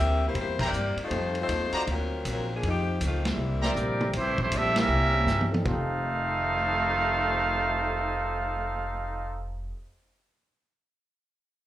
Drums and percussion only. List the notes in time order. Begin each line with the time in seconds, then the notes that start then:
0.35 kick, ride
0.59 kick, crash
0.73 hi-hat pedal
0.97 ride
1.11 kick, ride
1.35 ride
1.49 kick, hi-hat pedal, ride
1.72 ride
1.87 kick, ride
2.25 kick, hi-hat pedal, ride
2.63 kick, ride
3.01 kick, hi-hat pedal, ride
3.25 snare, ride
3.64 snare
3.76 hi-hat pedal, mid tom
4.01 mid tom
4.13 kick, ride
4.38 kick
4.52 kick, hi-hat pedal, ride
4.76 snare, ride
5.27 snare, hi-hat pedal
5.41 high tom
5.54 high tom
5.66 kick